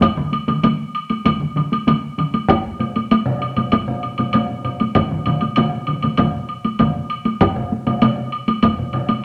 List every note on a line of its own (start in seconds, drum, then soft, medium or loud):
0.01 taiko medium
0.01 taiko high medium
0.01 high woodblock medium
0.17 taiko mid medium
0.32 taiko high soft
0.32 high woodblock soft
0.48 taiko mid medium
0.48 taiko high soft
0.48 high woodblock soft
0.64 taiko mid medium
0.64 taiko high medium
0.64 high woodblock soft
0.95 high woodblock soft
1.10 taiko high medium
1.10 high woodblock soft
1.25 taiko medium
1.25 taiko mid medium
1.25 taiko high medium
1.25 high woodblock medium
1.40 taiko mid medium
1.56 taiko mid medium
1.56 high woodblock soft
1.72 taiko high medium
1.72 high woodblock soft
1.87 taiko mid medium
1.87 taiko high medium
1.87 high woodblock soft
2.18 taiko mid medium
2.18 high woodblock soft
2.34 taiko high medium
2.34 high woodblock soft
2.49 taiko loud
2.49 taiko high medium
2.49 high woodblock soft
2.80 taiko low-mid medium
2.80 taiko high soft
2.80 high woodblock soft
2.96 taiko high soft
2.96 high woodblock soft
3.11 taiko high medium
3.11 high woodblock soft
3.26 taiko low-mid loud
3.42 high woodblock soft
3.56 taiko low-mid medium
3.56 taiko high medium
3.56 high woodblock soft
3.72 taiko medium
3.72 taiko high medium
3.72 high woodblock medium
3.88 taiko low-mid medium
4.03 high woodblock soft
4.18 taiko low-mid medium
4.18 taiko high soft
4.18 high woodblock soft
4.33 taiko low-mid loud
4.33 taiko high medium
4.33 high woodblock soft
4.65 taiko low-mid medium
4.65 high woodblock soft
4.80 taiko high medium
4.80 high woodblock soft
4.95 taiko medium
4.95 taiko low-mid medium
4.95 taiko mid medium
4.95 taiko high medium
4.95 high woodblock medium
5.11 taiko low-mid medium
5.11 taiko mid medium
5.26 taiko low-mid medium
5.26 taiko mid medium
5.26 taiko high soft
5.26 high woodblock soft
5.41 taiko high soft
5.41 high woodblock soft
5.56 taiko low-mid loud
5.56 taiko mid loud
5.56 taiko high medium
5.56 high woodblock soft
5.87 taiko low-mid medium
5.87 taiko mid medium
5.87 high woodblock soft
6.03 taiko low-mid medium
6.03 taiko mid medium
6.03 taiko high medium
6.03 high woodblock soft
6.17 taiko medium
6.17 taiko low-mid medium
6.17 taiko mid loud
6.17 taiko high medium
6.17 high woodblock soft
6.49 high woodblock soft
6.65 taiko high medium
6.65 high woodblock soft
6.79 taiko medium
6.79 taiko low-mid medium
6.79 taiko mid medium
6.79 taiko high medium
6.79 high woodblock soft
7.10 high woodblock soft
7.25 taiko high medium
7.25 high woodblock soft
7.41 taiko loud
7.41 taiko high medium
7.41 high woodblock medium
7.56 taiko low-mid medium
7.72 taiko high soft
7.87 taiko low-mid medium
7.87 taiko high medium
7.87 high woodblock soft
8.02 taiko low-mid loud
8.02 taiko high medium
8.02 high woodblock medium
8.32 high woodblock soft
8.48 taiko high medium
8.48 high woodblock soft
8.63 taiko medium
8.63 taiko low-mid medium
8.63 taiko high medium
8.63 high woodblock medium
8.79 taiko low-mid medium
8.93 taiko low-mid loud
8.93 high woodblock soft
9.09 taiko high medium
9.09 high woodblock soft